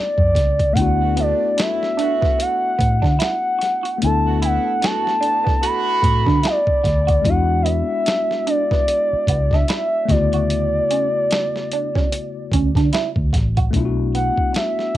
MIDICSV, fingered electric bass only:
0, 0, Header, 1, 3, 480
1, 0, Start_track
1, 0, Key_signature, 2, "major"
1, 0, Tempo, 810811
1, 448, Time_signature, 4, 2, 24, 8
1, 8862, End_track
2, 0, Start_track
2, 0, Title_t, "Fingered electric bass"
2, 0, Program_c, 0, 33
2, 111, Note_on_c, 0, 42, 86
2, 215, Note_off_c, 0, 42, 0
2, 215, Note_on_c, 0, 37, 77
2, 419, Note_off_c, 0, 37, 0
2, 453, Note_on_c, 0, 38, 101
2, 780, Note_off_c, 0, 38, 0
2, 1658, Note_on_c, 0, 45, 99
2, 1776, Note_off_c, 0, 45, 0
2, 1797, Note_on_c, 0, 50, 96
2, 1879, Note_off_c, 0, 50, 0
2, 2386, Note_on_c, 0, 38, 102
2, 2708, Note_off_c, 0, 38, 0
2, 3575, Note_on_c, 0, 45, 90
2, 3694, Note_off_c, 0, 45, 0
2, 3715, Note_on_c, 0, 50, 102
2, 3798, Note_off_c, 0, 50, 0
2, 4058, Note_on_c, 0, 38, 88
2, 4261, Note_off_c, 0, 38, 0
2, 4297, Note_on_c, 0, 40, 102
2, 4623, Note_off_c, 0, 40, 0
2, 5495, Note_on_c, 0, 37, 87
2, 5699, Note_off_c, 0, 37, 0
2, 5978, Note_on_c, 0, 38, 103
2, 6389, Note_off_c, 0, 38, 0
2, 7416, Note_on_c, 0, 38, 89
2, 7535, Note_off_c, 0, 38, 0
2, 7556, Note_on_c, 0, 50, 94
2, 7639, Note_off_c, 0, 50, 0
2, 7796, Note_on_c, 0, 38, 94
2, 7878, Note_off_c, 0, 38, 0
2, 7897, Note_on_c, 0, 33, 77
2, 8101, Note_off_c, 0, 33, 0
2, 8135, Note_on_c, 0, 35, 102
2, 8462, Note_off_c, 0, 35, 0
2, 8862, End_track
3, 0, Start_track
3, 0, Title_t, "Muted fingered electric bass strokes"
3, 3954, Note_on_c, 9, 29, 47
3, 4013, Note_off_c, 9, 29, 0
3, 5405, Note_on_c, 9, 29, 44
3, 5464, Note_off_c, 9, 29, 0
3, 8862, End_track
0, 0, End_of_file